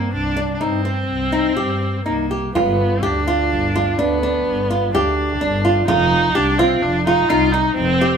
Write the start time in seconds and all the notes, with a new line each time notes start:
Already playing: A#3 C4
0.13 C2 D4
0.37 D4
0.54 D4
0.61 G2 C4 D#4
0.85 C4
1.09 C2
1.32 D#4
1.57 G2 G4
2.05 C2 A#3 D#4
2.31 G4
2.55 G1 B3 F4, frame drum
2.80 frame drum
3.03 D2 D4 G4
3.27 F4
3.52 G1
3.75 F4, frame drum
3.99 D2 B3 D4
4.23 D4
4.47 G1
4.70 F4
4.94 D2 D4 G4, frame drum
5.41 G1 D4
5.65 F4
5.88 F1 D#4 F4, frame drum
6.12 frame drum
6.35 C2 D4 G4
6.58 C4 F4
6.82 F1 D4
7.06 D#4 F4, frame drum
7.28 C2 D#4 F4
7.52 D#4
7.75 F1 C4
8.01 G4